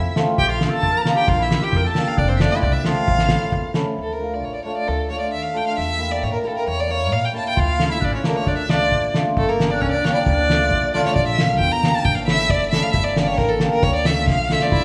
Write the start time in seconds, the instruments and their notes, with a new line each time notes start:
Already playing: clarinet E4, violin E5
0.16 hammered dulcimer A3 C4 F4, snare
0.37 upright bass A#1, clarinet G4, violin G5, kick
0.48 clarinet F4
0.52 violin F5
0.60 hammered dulcimer A#3 D4 F4, snare
0.69 clarinet A4
0.74 violin A5
0.83 upright bass F2, kick
0.92 clarinet A#4
0.97 violin A5 A#5
1.05 hammered dulcimer A#3 D4 F4, clarinet A#4, violin A#5, snare
1.15 clarinet G4, violin G5
1.28 upright bass A#1, clarinet F4, violin F5, kick
1.39 clarinet E4, violin E5
1.51 hammered dulcimer A#3 D4 F4, snare
1.61 clarinet G4, violin G5, snare
1.73 upright bass F2, kick, snare
1.77 clarinet A#4
1.85 clarinet A4, violin A5
1.95 hammered dulcimer A#3 D4 G4, snare
2.08 violin F5
2.18 upright bass F1, clarinet D4, violin D5, kick
2.28 clarinet C4, violin C5 D5
2.36 violin E5
2.40 hammered dulcimer A3 C4 F4, clarinet D4, violin D5, snare
2.51 clarinet E4, violin E5
2.62 upright bass C2, clarinet D4, violin D5, kick
2.73 violin E5
2.84 hammered dulcimer A3 C4 G4, clarinet F4, violin F5, snare
3.08 upright bass A1, kick
3.18 snare
3.29 hammered dulcimer A3 C#4 E4, snare
3.40 snare
3.52 upright bass E2, kick
3.74 hammered dulcimer A3 C#4 E4, snare
3.98 upright bass D2, violin A4
4.13 violin A#4
4.19 hammered dulcimer A3 D4 F4
4.34 violin D5
4.44 upright bass A1, violin C#5
4.55 violin D5
4.65 hammered dulcimer A3 D4 F4, violin C#5
4.77 violin D5
4.88 upright bass D2, violin A4
5.10 hammered dulcimer A3 D4 F4, violin C#5
5.20 violin D5
5.33 upright bass D#2, violin E5
5.42 violin F5
5.53 hammered dulcimer A3 D4 F4, violin G5
5.67 violin F5
5.78 upright bass E2, violin E5
5.98 hammered dulcimer A#3 E4 G4
6.11 violin D5
6.23 upright bass A#2, violin C#5
6.33 violin A#4
6.43 hammered dulcimer A#3 E4 G4, violin A#4
6.47 violin A4
6.57 violin A#4
6.67 upright bass E2, violin C#5
6.80 violin D5
6.88 hammered dulcimer A#3 E4 A#4, violin C#5
7.13 upright bass A#2, violin F5
7.25 violin G5
7.33 hammered dulcimer A#3 E4 G4, violin A5
7.49 violin G5
7.56 upright bass D2, clarinet F4, violin F5, kick
7.78 hammered dulcimer A3 D4 F4, snare
7.90 clarinet E4, violin E5
8.00 upright bass A1, clarinet D4, kick
8.05 violin D5
8.12 clarinet C#4, violin C#5
8.23 hammered dulcimer A3 D4 F4, clarinet A#3, violin A#4, snare
8.37 violin C#5
8.47 upright bass D2, clarinet D4, violin D5, kick
8.57 violin E5
8.68 hammered dulcimer A3 D4 F4, clarinet D4, violin D5, snare
8.92 upright bass A1, clarinet A#3, kick
9.14 hammered dulcimer A3 D4 F4, snare
9.37 upright bass G1, clarinet A3, violin A4, kick
9.48 clarinet A#3, violin A#4
9.59 hammered dulcimer A#3 D4 G4, snare
9.70 clarinet D4, violin D5
9.80 upright bass D2, clarinet C#4, violin C#5, kick
9.91 clarinet D4, violin D5
10.04 hammered dulcimer A#3 D4 G4, violin C#5, snare
10.13 clarinet E4, violin D5
10.24 upright bass D2, clarinet D4, violin D5, kick
10.50 hammered dulcimer A3 D4 F4, snare
10.71 upright bass B1, kick
10.94 hammered dulcimer A3 D4 F4, violin D5, snare
11.05 violin C#5, snare
11.15 upright bass A#1, violin D5, kick
11.27 violin E5
11.38 hammered dulcimer A#3 D4 F4, snare
11.49 violin F5
11.59 upright bass E2, violin G5, kick
11.72 violin A#5
11.83 hammered dulcimer A#3 D4 G4, snare
11.95 violin A5
12.05 upright bass A1, violin G5, kick
12.15 violin F5
12.27 hammered dulcimer A3 C#4 E4, violin E5, snare
12.50 upright bass F#1, violin D5, kick
12.71 hammered dulcimer A3 C#4 E4, violin E5, snare
12.83 violin F5
12.92 upright bass G1, violin E5, kick
13.04 violin D5
13.16 hammered dulcimer A#3 D4 G4, snare
13.27 violin C#5
13.38 upright bass A1, violin A#4, kick, snare
13.49 violin A4
13.60 hammered dulcimer A#3 D4 G4, snare
13.71 violin A#4
13.83 upright bass D2, violin C#5, kick
13.95 violin D5
14.05 hammered dulcimer A3 D4 F4, violin E5, snare
14.27 upright bass B1, violin F5, kick, snare
14.50 hammered dulcimer A3 D4 F4, violin E5, snare
14.60 violin D5 E5, snare
14.71 upright bass A#1, clarinet E4, violin E5, kick